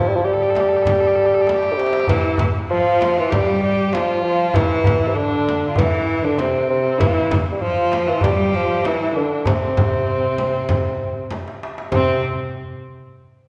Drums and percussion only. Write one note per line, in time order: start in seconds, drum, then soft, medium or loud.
0.25 darbuka ka soft
0.40 darbuka ka soft
0.55 darbuka tek medium
0.55 frame drum medium
0.85 darbuka dum medium
0.85 frame drum medium
1.17 darbuka ka soft
1.47 darbuka tek medium
1.47 frame drum medium
1.56 darbuka ka medium
1.63 darbuka tek medium
1.71 darbuka ka medium
1.79 darbuka tek medium
1.87 darbuka ka medium
1.93 darbuka tek medium
2.00 darbuka ka medium
2.07 darbuka dum medium
2.07 frame drum medium
2.38 darbuka dum medium
2.38 frame drum medium
2.71 darbuka ka soft
3.01 darbuka tek medium
3.01 frame drum medium
3.32 frame drum medium
3.32 darbuka dum medium
3.78 darbuka ka soft
3.93 darbuka tek medium
3.93 frame drum medium
4.08 darbuka ka soft
4.54 darbuka dum loud
4.54 frame drum medium
4.84 darbuka dum loud
4.84 frame drum medium
5.15 darbuka ka soft
5.49 frame drum medium
5.76 darbuka dum medium
5.76 frame drum medium
6.07 darbuka ka soft
6.38 darbuka tek medium
6.38 frame drum medium
6.54 darbuka ka soft
7.00 darbuka dum medium
7.00 frame drum medium
7.31 darbuka dum medium
7.31 frame drum medium
7.61 darbuka ka soft
7.92 darbuka tek medium
7.92 frame drum medium
8.21 darbuka dum medium
8.21 frame drum medium
8.54 darbuka ka soft
8.70 darbuka ka soft
8.85 darbuka tek medium
8.85 frame drum medium
9.00 darbuka ka soft
9.45 darbuka dum loud
9.45 frame drum medium
9.77 frame drum medium
9.77 darbuka dum medium
10.25 darbuka ka soft
10.38 frame drum medium
10.69 frame drum medium
10.69 darbuka dum medium
11.17 darbuka ka soft
11.31 darbuka tek medium
11.31 frame drum medium
11.48 darbuka ka medium
11.63 darbuka tek medium
11.78 darbuka ka medium
11.92 frame drum medium
11.92 darbuka dum medium